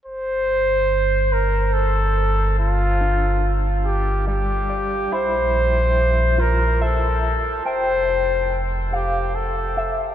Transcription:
0, 0, Header, 1, 4, 480
1, 0, Start_track
1, 0, Tempo, 845070
1, 30, Time_signature, 3, 2, 24, 8
1, 5763, End_track
2, 0, Start_track
2, 0, Title_t, "Clean electric guitar"
2, 0, Program_c, 0, 27
2, 1710, Note_on_c, 0, 62, 46
2, 2427, Note_on_c, 0, 55, 62
2, 2668, Note_on_c, 0, 74, 39
2, 2910, Note_on_c, 0, 64, 59
2, 3251, Note_off_c, 0, 62, 0
2, 3625, Note_on_c, 0, 65, 65
2, 3726, Note_off_c, 0, 64, 0
2, 3871, Note_on_c, 0, 76, 51
2, 3970, Note_off_c, 0, 55, 0
2, 4083, Note_off_c, 0, 65, 0
2, 4210, Note_off_c, 0, 74, 0
2, 4347, Note_on_c, 0, 79, 60
2, 5070, Note_on_c, 0, 77, 56
2, 5164, Note_off_c, 0, 79, 0
2, 5412, Note_off_c, 0, 76, 0
2, 5549, Note_on_c, 0, 76, 46
2, 5646, Note_off_c, 0, 77, 0
2, 5763, Note_off_c, 0, 76, 0
2, 5763, End_track
3, 0, Start_track
3, 0, Title_t, "Flugelhorn"
3, 0, Program_c, 1, 56
3, 32, Note_on_c, 1, 72, 88
3, 755, Note_on_c, 1, 70, 78
3, 764, Note_off_c, 1, 72, 0
3, 986, Note_on_c, 1, 69, 81
3, 994, Note_off_c, 1, 70, 0
3, 1467, Note_off_c, 1, 69, 0
3, 1472, Note_on_c, 1, 65, 87
3, 2015, Note_off_c, 1, 65, 0
3, 2189, Note_on_c, 1, 67, 77
3, 2412, Note_off_c, 1, 67, 0
3, 2433, Note_on_c, 1, 67, 74
3, 2916, Note_on_c, 1, 72, 89
3, 2924, Note_off_c, 1, 67, 0
3, 3640, Note_on_c, 1, 70, 79
3, 3648, Note_off_c, 1, 72, 0
3, 3878, Note_on_c, 1, 69, 77
3, 3887, Note_off_c, 1, 70, 0
3, 4348, Note_off_c, 1, 69, 0
3, 4351, Note_on_c, 1, 72, 91
3, 4894, Note_off_c, 1, 72, 0
3, 5076, Note_on_c, 1, 67, 73
3, 5312, Note_on_c, 1, 69, 67
3, 5321, Note_off_c, 1, 67, 0
3, 5671, Note_off_c, 1, 69, 0
3, 5763, End_track
4, 0, Start_track
4, 0, Title_t, "Sub bass"
4, 0, Program_c, 2, 38
4, 30, Note_on_c, 2, 31, 84
4, 2886, Note_off_c, 2, 31, 0
4, 2905, Note_on_c, 2, 34, 79
4, 4323, Note_off_c, 2, 34, 0
4, 4348, Note_on_c, 2, 29, 80
4, 5763, Note_off_c, 2, 29, 0
4, 5763, End_track
0, 0, End_of_file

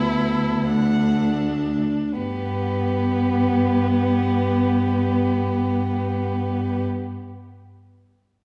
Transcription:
0, 0, Header, 1, 5, 480
1, 0, Start_track
1, 0, Key_signature, 1, "major"
1, 0, Tempo, 500000
1, 8102, End_track
2, 0, Start_track
2, 0, Title_t, "Violin"
2, 0, Program_c, 0, 40
2, 0, Note_on_c, 0, 69, 40
2, 618, Note_on_c, 0, 78, 42
2, 633, Note_off_c, 0, 69, 0
2, 1342, Note_off_c, 0, 78, 0
2, 2104, Note_on_c, 0, 67, 39
2, 6582, Note_off_c, 0, 67, 0
2, 8102, End_track
3, 0, Start_track
3, 0, Title_t, "Violin"
3, 0, Program_c, 1, 40
3, 0, Note_on_c, 1, 64, 59
3, 637, Note_on_c, 1, 62, 48
3, 651, Note_off_c, 1, 64, 0
3, 2091, Note_off_c, 1, 62, 0
3, 2097, Note_on_c, 1, 59, 52
3, 6575, Note_off_c, 1, 59, 0
3, 8102, End_track
4, 0, Start_track
4, 0, Title_t, "Viola"
4, 0, Program_c, 2, 41
4, 0, Note_on_c, 2, 59, 38
4, 633, Note_on_c, 2, 57, 43
4, 648, Note_off_c, 2, 59, 0
4, 1763, Note_off_c, 2, 57, 0
4, 2084, Note_on_c, 2, 59, 51
4, 6562, Note_off_c, 2, 59, 0
4, 8102, End_track
5, 0, Start_track
5, 0, Title_t, "Cello"
5, 0, Program_c, 3, 42
5, 0, Note_on_c, 3, 38, 52
5, 1731, Note_off_c, 3, 38, 0
5, 2095, Note_on_c, 3, 43, 44
5, 6573, Note_off_c, 3, 43, 0
5, 8102, End_track
0, 0, End_of_file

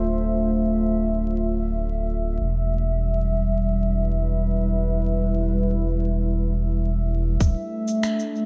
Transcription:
0, 0, Header, 1, 4, 480
1, 0, Start_track
1, 0, Tempo, 500000
1, 8117, End_track
2, 0, Start_track
2, 0, Title_t, "Ambient pad"
2, 0, Program_c, 0, 92
2, 0, Note_on_c, 0, 57, 78
2, 0, Note_on_c, 0, 62, 93
2, 0, Note_on_c, 0, 65, 78
2, 0, Note_on_c, 0, 72, 68
2, 0, Note_on_c, 0, 76, 73
2, 2311, Note_off_c, 0, 65, 0
2, 2312, Note_off_c, 0, 72, 0
2, 2313, Note_off_c, 0, 57, 0
2, 2314, Note_on_c, 0, 55, 78
2, 3248, Note_on_c, 0, 64, 84
2, 3467, Note_on_c, 0, 71, 75
2, 7109, Note_on_c, 0, 57, 82
2, 7110, Note_off_c, 0, 71, 0
2, 7111, Note_off_c, 0, 62, 0
2, 7112, Note_off_c, 0, 55, 0
2, 7112, Note_off_c, 0, 64, 0
2, 7267, Note_on_c, 0, 62, 85
2, 7924, Note_on_c, 0, 65, 76
2, 8029, Note_on_c, 0, 72, 93
2, 8117, Note_off_c, 0, 57, 0
2, 8117, Note_off_c, 0, 62, 0
2, 8117, Note_off_c, 0, 65, 0
2, 8117, Note_off_c, 0, 72, 0
2, 8117, Note_off_c, 0, 76, 0
2, 8117, End_track
3, 0, Start_track
3, 0, Title_t, "Sub bass"
3, 0, Program_c, 1, 38
3, 0, Note_on_c, 1, 26, 87
3, 2282, Note_off_c, 1, 26, 0
3, 2307, Note_on_c, 1, 28, 81
3, 7080, Note_off_c, 1, 28, 0
3, 7107, Note_on_c, 1, 26, 104
3, 7243, Note_off_c, 1, 26, 0
3, 8117, End_track
4, 0, Start_track
4, 0, Title_t, "Drums"
4, 7109, Note_on_c, 9, 36, 113
4, 7110, Note_on_c, 9, 82, 52
4, 7205, Note_off_c, 9, 36, 0
4, 7206, Note_off_c, 9, 82, 0
4, 7564, Note_on_c, 9, 82, 42
4, 7660, Note_off_c, 9, 82, 0
4, 7713, Note_on_c, 9, 26, 78
4, 7713, Note_on_c, 9, 82, 56
4, 7809, Note_off_c, 9, 26, 0
4, 7809, Note_off_c, 9, 82, 0
4, 7866, Note_on_c, 9, 82, 31
4, 7962, Note_off_c, 9, 82, 0
4, 8117, End_track
0, 0, End_of_file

